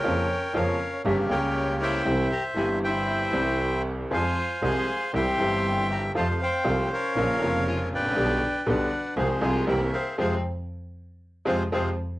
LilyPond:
<<
  \new Staff \with { instrumentName = "Bandoneon" } { \time 4/4 \key f \minor \tempo 4 = 118 << { g''4 f''4 e''8 g''4 g''8~ | g''8 bes''8 aes''8 g''2 r8 | aes''4 c'''4 c'''4. bes''8 | a''8 g''4 f''4. aes''8 g''8~ |
g''4 ges''4 f''8 aes''8 g''8 f''8 | <aes' c'' f''>8 r2 <aes' c'' f''>8 <aes' c'' f''>8 r8 | } \\ { <bes' des''>4 <bes' des''>4 <g' bes'>8 <bes' des''>4 <c'' e''>8~ | <c'' e''>4. <c'' e''>2 r8 | <c'' f''>4 <f'' aes''>4 <e'' g''>2 | <c'' f''>8 c''4 <bes' des''>2 <b' d''>8~ |
<b' d''>4 <b' d''>4 <aes' c''>4 <bes' e''>8 <aes' c''>8 | r1 | } >> }
  \new Staff \with { instrumentName = "Violin" } { \time 4/4 \key f \minor des'4 des'4 des'8 des'4 e'8~ | e'8 g'8 e'8 e'2 r8 | f'4 aes'4 g'4. g'8 | f'8 c'4 des'4. f'8 d'8~ |
d'4 d'4 c'8 f'8 e'8 c'8 | c'8 r2 c'8 c'8 r8 | }
  \new Staff \with { instrumentName = "String section" } { \time 4/4 \key f \minor <bes des' f'>8 r8 <bes des' f'>8 r8 <bes des' g'>8 <bes des' g'>4. | <g c' e'>8 r8 <g c' e'>4. <g c' e'>4. | <aes c' f'>8 r8 <aes c' f'>8 r8 <g c' e'>8 <g c' e'>4. | <a c' f'>8 r8 <a c' f'>8 r8 <bes des' f'>8 <bes des' f'>4. |
<b d' g'>8 r8 <b d' g'>8 r8 <c' f' aes'>8 <c' f' aes'>8 <c' e' bes'>8 r8 | <aes c' f'>8 r2 <aes c' f'>8 <aes c' f'>8 r8 | }
  \new Staff \with { instrumentName = "Upright piano" } { \clef bass \time 4/4 \key f \minor << { <f, des f bes f'>8 r8 <f, des f bes f'>8 r8 <g,, g, des g bes g'>8 <des, des g bes g'>4. | <c, c e g c' g'>8 r8 <g,, g, e g c' g'>4. <c, c e g c' g'>4. | <f, f aes c' aes'>8 r8 <c, c f aes c' aes'>8 r8 <c, c e g c' g'>8 <g,, g, e g c' g'>4. | <f, c f a f'>8 r8 <c, c f a f'>8 r8 <bes,, bes, des f bes f'>8 <f,, f, des f bes f'>4. |
<b,, b, d g b g'>8 r8 <b,, b, d g b g'>8 r8 <c, c f aes c' aes'>8 <c, c f aes c' aes'>8 <c, c e bes c' g'>8 r8 | <c f aes>8 r2 <c f aes>8 <c f aes>8 r8 | } \\ { r1 | r1 | r1 | r2. r8 r32 aes,,32 a,,32 bes,,32 |
r1 | r1 | } >> }
  \new Staff \with { instrumentName = "Double bass" } { \clef bass \time 4/4 \key f \minor f,8 r8 f,8 r8 g,,8 des,4. | c,8 r8 g,,4. c,4. | f,8 r8 c,8 r8 c,8 g,,4. | f,8 r8 c,8 r8 bes,,8 f,,4 a,,8 |
b,,8 r8 b,,8 r8 c,8 c,8 c,8 r8 | f,8 r2 f,8 f,8 r8 | }
>>